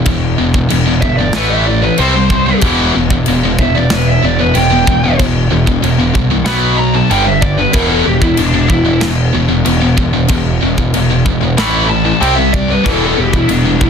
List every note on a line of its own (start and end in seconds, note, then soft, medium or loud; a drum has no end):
0.05 0.34 E1 medium
0.05 0.35 E2 medium
0.05 0.35 B2 medium
0.05 kick loud
0.05 crash medium
0.38 0.66 E1 medium
0.38 0.54 E2 medium
0.38 0.54 B2 medium
0.54 0.70 E2 medium
0.54 0.70 B2 medium
0.54 kick medium
0.70 0.98 E1 medium
0.70 0.86 E2 medium
0.70 0.85 B2 medium
0.70 crash medium
0.87 1.03 E2 medium
0.87 1.02 B2 medium
1.01 1.30 G1 medium
1.01 1.19 E2 medium
1.01 1.19 B2 medium
1.01 1.16 E5 medium
1.01 kick medium
1.17 1.35 E2 medium
1.17 1.35 B2 medium
1.17 1.33 D5 medium
1.33 1.89 A1 medium
1.33 1.65 A2 medium
1.33 1.50 B4 medium
1.33 snare loud
1.33 crash medium
1.37 1.66 E3 medium
1.37 1.66 A3 loud
1.50 1.65 E5 loud
1.66 1.83 A2 medium
1.66 1.82 E3 medium
1.66 1.82 D5 medium
1.82 1.99 A2 medium
1.82 1.99 E3 medium
1.82 1.98 B4 loud
1.98 2.53 C2 medium
1.98 2.13 C3 loud
1.98 2.14 G3 medium
1.98 2.14 C4 loud
1.98 2.60 C5 loud
1.98 crash medium
2.16 2.31 C3 medium
2.16 2.30 G3 medium
2.30 2.47 C3 medium
2.30 2.47 G3 medium
2.30 kick medium
2.49 2.64 C3 medium
2.49 2.63 G3 loud
2.61 2.90 E1 loud
2.61 2.93 E2 medium
2.61 2.93 B2 medium
2.61 2.94 E3 loud
2.61 kick loud
2.61 crash medium
2.96 3.23 E1 medium
2.96 3.11 E2 medium
2.96 3.10 B2 medium
3.10 3.27 E2 medium
3.10 3.27 B2 medium
3.10 kick medium
3.26 3.55 E1 loud
3.26 3.43 E2 medium
3.26 3.44 B2 medium
3.26 crash medium
3.45 3.60 E2 medium
3.45 3.60 B2 medium
3.59 3.86 E1 medium
3.59 3.76 E2 medium
3.59 3.76 B2 medium
3.59 3.75 E5 medium
3.59 kick medium
3.76 3.92 E2 medium
3.76 3.92 B2 medium
3.76 3.91 D5 medium
3.90 4.18 E1 medium
3.90 4.21 E2 medium
3.90 4.21 B2 medium
3.90 4.08 B4 medium
3.90 snare loud
3.90 crash medium
4.08 4.23 E5 loud
4.23 4.50 E1 medium
4.23 4.39 E2 medium
4.23 4.40 B2 medium
4.23 4.40 D5 medium
4.40 4.56 E2 medium
4.40 4.56 B2 medium
4.40 4.55 B4 medium
4.55 4.82 E1 medium
4.55 4.71 E2 medium
4.55 4.71 B2 medium
4.55 5.17 G5 loud
4.55 crash medium
4.72 4.87 E2 medium
4.72 4.87 B2 medium
4.87 5.14 E1 medium
4.87 5.03 E2 medium
4.87 5.03 B2 loud
4.87 kick medium
5.05 5.19 E2 medium
5.05 5.19 B2 medium
5.19 5.47 E1 medium
5.19 5.48 E2 medium
5.19 5.48 B2 medium
5.19 kick loud
5.19 crash medium
5.51 5.78 E1 medium
5.51 5.66 E2 medium
5.51 5.66 B2 medium
5.67 5.81 E2 medium
5.67 5.82 B2 medium
5.67 kick medium
5.82 6.10 E1 loud
5.82 5.98 E2 medium
5.82 5.97 B2 medium
5.82 crash medium
5.98 6.13 E2 medium
5.98 6.12 B2 medium
6.14 6.42 C2 medium
6.14 6.30 E2 medium
6.14 6.30 B2 medium
6.14 kick medium
6.31 6.47 E2 medium
6.31 6.44 B2 medium
6.45 7.01 B1 medium
6.45 6.76 B2 loud
6.45 6.76 F#3 medium
6.45 6.76 B3 loud
6.45 6.77 B5 loud
6.45 snare loud
6.45 crash medium
6.78 6.94 B2 medium
6.78 6.93 F#3 medium
6.78 6.93 A#5 medium
6.95 7.10 B2 medium
6.95 7.11 F#3 medium
6.95 7.11 A5 loud
7.10 7.65 G1 medium
7.10 7.24 G2 medium
7.10 7.24 D3 loud
7.10 7.25 G3 loud
7.10 7.26 G5 loud
7.10 crash medium
7.25 7.41 G2 medium
7.25 7.41 D3 medium
7.25 7.41 E5 loud
7.41 7.58 G2 medium
7.41 7.57 D3 medium
7.41 7.57 D5 medium
7.41 kick medium
7.57 7.73 G2 medium
7.57 7.74 D3 medium
7.57 7.73 B4 medium
7.72 8.02 E1 loud
7.72 8.04 E2 medium
7.72 8.04 B2 medium
7.72 8.04 E3 loud
7.72 7.88 A#4 loud
7.72 kick loud
7.72 crash medium
7.88 8.05 A4 medium
8.05 8.34 E1 loud
8.05 8.21 E2 medium
8.05 8.21 B2 medium
8.05 8.21 G4 loud
8.21 8.37 E2 medium
8.21 8.38 B2 medium
8.21 8.38 E4 medium
8.21 kick medium
8.37 8.65 E1 loud
8.37 8.53 E2 medium
8.37 8.53 B2 medium
8.37 8.69 D4 medium
8.37 crash medium
8.54 8.69 E2 medium
8.54 8.69 B2 medium
8.69 8.97 E1 medium
8.69 8.84 E2 medium
8.69 8.85 B2 medium
8.69 9.01 E4 loud
8.69 kick medium
8.86 9.00 E2 medium
8.86 9.01 B2 medium
9.01 9.29 E1 medium
9.01 9.31 E2 medium
9.01 9.31 B2 medium
9.01 snare loud
9.01 crash medium
9.34 9.62 E1 medium
9.34 9.48 E2 medium
9.34 9.47 B2 medium
9.49 9.64 E2 medium
9.49 9.64 B2 medium
9.65 9.93 E1 loud
9.65 9.80 E2 medium
9.65 9.80 B2 medium
9.65 crash medium
9.81 9.97 E2 medium
9.81 9.97 B2 medium
9.98 10.25 E1 medium
9.98 10.13 E2 medium
9.98 10.12 B2 medium
9.98 kick medium
10.13 10.29 E2 medium
10.13 10.29 B2 medium
10.28 10.57 E1 loud
10.28 10.59 E2 medium
10.28 10.59 B2 medium
10.28 kick loud
10.28 crash medium
10.63 10.89 E1 loud
10.63 10.77 E2 medium
10.63 10.77 B2 medium
10.78 10.93 E2 medium
10.78 10.94 B2 medium
10.78 kick medium
10.94 11.22 E1 loud
10.94 11.09 E2 medium
10.94 11.09 B2 medium
10.94 crash medium
11.10 11.25 E2 medium
11.10 11.24 B2 medium
11.25 11.58 E1 medium
11.25 11.40 E2 medium
11.25 11.39 B2 medium
11.25 kick medium
11.41 11.57 E2 medium
11.41 11.57 B2 medium
11.57 12.12 A1 medium
11.57 11.87 A2 medium
11.57 11.88 E3 medium
11.57 11.88 A3 loud
11.57 11.89 B5 loud
11.57 snare loud
11.57 crash medium
11.89 12.05 A2 medium
11.89 12.04 E3 medium
11.89 12.04 A5 medium
12.05 12.20 A2 medium
12.05 12.20 E3 medium
12.05 12.21 A5 medium
12.20 12.75 C2 medium
12.20 12.35 C3 medium
12.20 12.35 G3 loud
12.20 12.35 C4 loud
12.20 12.35 G5 loud
12.20 crash medium
12.35 12.52 C3 medium
12.35 12.51 G3 medium
12.35 12.53 E5 loud
12.52 12.68 C3 medium
12.52 12.67 G3 medium
12.52 12.68 D5 loud
12.52 kick medium
12.69 12.84 C3 medium
12.69 12.84 G3 medium
12.69 12.89 B4 loud
12.83 13.13 E1 loud
12.83 13.14 E2 medium
12.83 13.15 B2 medium
12.83 13.90 E3 medium
12.83 13.15 E3 medium
12.83 13.90 G3 medium
12.83 13.90 B3 loud
12.83 kick loud
12.83 crash medium
12.88 13.90 E4 loud
12.88 13.02 A4 loud
13.04 13.19 A4 medium
13.17 13.44 E1 medium
13.17 13.32 E2 medium
13.17 13.32 B2 medium
13.17 13.35 G4 medium
13.33 13.47 E2 medium
13.33 13.48 B2 medium
13.33 13.49 E4 medium
13.33 kick medium
13.48 13.76 E1 loud
13.48 13.64 E2 medium
13.48 13.63 B2 medium
13.48 13.80 D4 loud
13.48 crash medium
13.65 13.80 E2 medium
13.65 13.79 B2 medium
13.80 13.90 E1 medium
13.80 13.90 E2 medium
13.80 13.90 B2 medium
13.80 13.90 E4 loud
13.80 kick medium